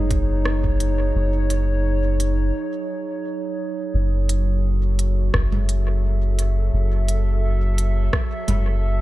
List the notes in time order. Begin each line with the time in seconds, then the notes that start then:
Already playing: F#1 F#3 D#4 G#4 C#5 D#5
0.11 kick, closed hi-hat
0.45 cross-stick
0.64 kick
0.80 closed hi-hat
1.15 F#1
1.50 closed hi-hat
2.20 closed hi-hat
3.94 F#1 F#3
4.11 F#4
4.29 A4, closed hi-hat
4.94 E5
4.99 closed hi-hat
5.34 F#1, kick, cross-stick
5.52 low conga
5.69 closed hi-hat
6.39 closed hi-hat
6.74 F#1
7.08 closed hi-hat
7.78 closed hi-hat
8.13 kick, cross-stick
8.48 F#1, closed hi-hat, low conga